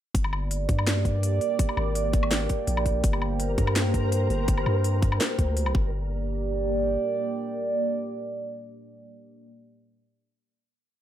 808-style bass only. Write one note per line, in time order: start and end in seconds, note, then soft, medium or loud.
0.15 0.67 G1 medium
0.69 1.40 G2 loud
1.77 2.48 G#1 loud
2.68 3.02 A#1 medium
3.04 3.57 G1 loud
3.58 4.29 G2 loud
4.30 4.65 G1 loud
4.66 5.19 G2 medium
5.39 5.73 D2 loud
5.75 6.97 G1 loud